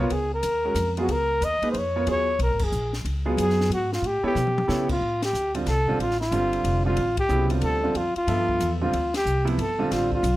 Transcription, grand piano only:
0.65 G#3 C#4 F#4 A#4
0.97 F#3 B3 F4 G#4
1.63 A#3 D#4 G#4 B4
1.96 B3 F4 A#4 C#5
2.07 F#3 B3 F4 G#4
3.26 F#3 B3 F4 G#4
4.23 B3 E4 A4 C#5
4.68 B3 E4 A4 C#5
5.55 D3 G3 C4 F4
5.88 D3 G3 C4 F4
6.32 D3 G3 C4 F4
6.85 D3 G3 C4 F4
7.29 C#3 F#3 B3 E4
7.50 D3 G3 C4 F4
7.83 D3 G3 C4 F4
8.28 F3 B3 A4 E5
8.81 D3 G3 C4 F4
9.45 C3 F3 B3 E4
9.78 D3 G3 C4 F4

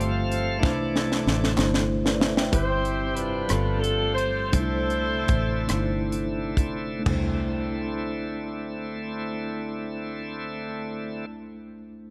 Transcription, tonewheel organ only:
Already playing: F3 A3 C4
0.11 F5
0.59 E3 A3 D4
2.52 C3 G3 C4 G4
3.49 F3 A3 C4
4.52 D3 A3 E4
7.06 D3 A3 C4 E4

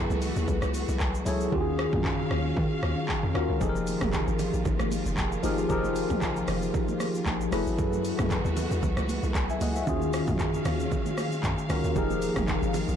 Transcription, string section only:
Already playing: E3 A3 B3 F#4
1.52 D#3 F#3 C#4 F5
3.61 F3 A#3 F4
7.52 E3 A3 B3 F#4
9.87 D#3 F#3 C#4 F5
11.96 D#3 G#3 A#3

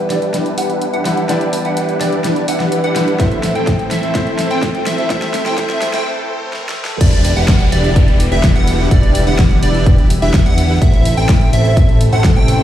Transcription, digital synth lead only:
0.10 D5
0.58 F#5
0.93 F#5
1.29 D5
1.65 F#5
2.01 D5
2.48 F#5
2.84 F#5
3.20 E5
3.55 G5
3.91 E5
4.15 E5
4.51 G5
4.86 E5
5.10 E5
5.46 G5
5.58 E5
5.94 G5
7.01 D5
7.37 F#5
7.72 D5
8.32 E5
8.56 F#5
8.91 D5
9.27 F#5
9.63 D5
10.22 E5
10.46 F#5
10.82 E5
11.17 G5
11.53 E5
12.13 F#5
12.36 G5

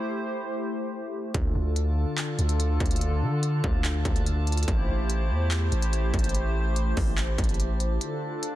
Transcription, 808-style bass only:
1.34 D2
1.55 D2
2.39 D2
2.80 D2
3.22 D3
3.64 D2
4.05 D2
4.68 A1
4.89 A1
5.30 E2
5.72 A1
6.14 A1
6.97 A1
7.38 A1

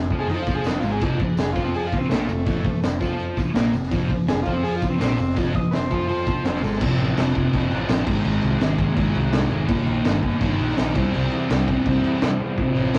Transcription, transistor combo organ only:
0.19 G#4
0.30 D#4
0.43 F4
0.55 G#4
0.66 D#4
0.80 F4
0.92 G#4
1.40 G#4
1.52 F4
1.64 C4
1.75 G#4
1.87 F4
1.98 C4
2.09 A3
4.29 G#4
4.43 F4
4.53 C4
4.63 G#4
4.76 F4
4.89 C4
5.01 C4
5.56 D#5
5.71 B4
5.75 C5
6.46 C5
6.64 A4

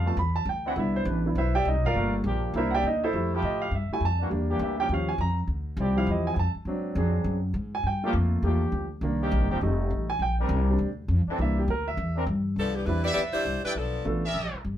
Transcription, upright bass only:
Already playing: F2
0.17 E2
0.45 D2
0.76 C2
1.05 A1
1.35 B1
1.65 C2
1.75 B1
1.85 G1
1.94 G1
2.24 A#1
2.54 C2
2.83 D2
3.13 F2
3.42 A2
3.71 G2
3.89 muted upright bass stroke
4.00 F2
4.31 E2
4.59 D2
4.89 D#2
5.18 F2
5.47 D2
5.77 C2
6.07 E2
6.36 F2
6.55 muted upright bass stroke
6.65 G#2
6.95 F2
7.24 F#2
7.54 G#2
7.83 G2
8.13 F2
8.42 E2
8.72 D2
9.01 C2
9.31 A#1
9.41 G1
9.51 D#1
9.61 F1
9.90 A1
10.19 A#1
10.49 C2
10.78 D2
11.08 F2
11.27 muted upright bass stroke
11.38 C2
11.68 D2
11.97 E2
12.26 G2
12.56 C2
12.86 E2
13.16 D2
13.34 muted upright bass stroke
13.45 C2
13.64 muted upright bass stroke
13.75 B1
14.05 A1
14.34 A#1
14.53 muted upright bass stroke
14.65 G1

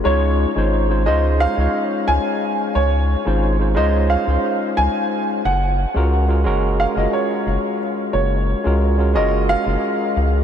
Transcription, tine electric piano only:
0.04 G#3 C#4 D#4 F4 C#5
0.55 G#3 C#4 D#4 F4 C5
0.89 G#3 C#4 D#4 F4 C5
1.05 G#3 C#4 D#4 F4 C5
1.55 G#3 C#4 D#4 F4
1.60 C#5
3.25 G#3 C#4 D#4 F4 C5
3.59 G#3 C#4 D#4 F4 C5
3.75 G#3 C#4 D#4 F4 C5
4.25 G#3 C#4 D#4
4.29 F4 C5
5.95 G#3 C#4 F4 F#4 A#4
6.28 G#3 C#4 F4 F#4 A#4
6.44 G#3 C#4 F#4 A#4
6.94 G#3 C#4 F4 F#4
7.00 A#4
8.64 G#3 C#4 F4 F#4 A#4
8.97 G#3 C#4 F4 F#4 A#4
9.14 G#3 C#4 F4 F#4 A#4
9.64 G#3 C#4 F4
9.68 F#4 A#4

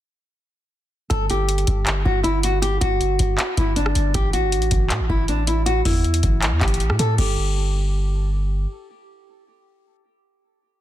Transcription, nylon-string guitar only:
1.10 A4
1.30 G4
2.05 F#4
2.23 E4
2.44 F#4
2.62 G4
2.81 F#4
3.57 E4
3.76 D4
4.15 G4
4.33 F#4
5.10 E4
5.29 D4
5.47 E4
5.66 F#4
5.86 E4
6.61 G4
7.00 A4
7.18 G4

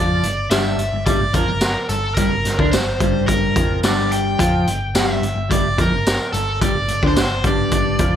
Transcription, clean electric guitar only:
Already playing: F3 F4
0.24 G2
0.51 G2 G3
0.79 G2
0.93 G2
1.06 G2 G3
1.20 G2
1.33 F2 F3
1.49 G2
1.90 G2
2.18 G2 G3
2.32 G2
2.44 G2
2.58 D3 D4
2.74 G2
3.00 G2 G3
3.57 F2 F3
3.83 G2 G3
4.38 F3 F4
4.67 G2
4.95 G2 G3
5.23 G2
5.35 G2
5.49 G2 G3
5.65 G2
5.78 F2 F3
5.92 G2
6.34 G2
6.61 G2 G3
6.74 G2
6.88 G2
7.03 D3 D4
7.17 G2
7.44 G2 G3
7.99 F2 F3

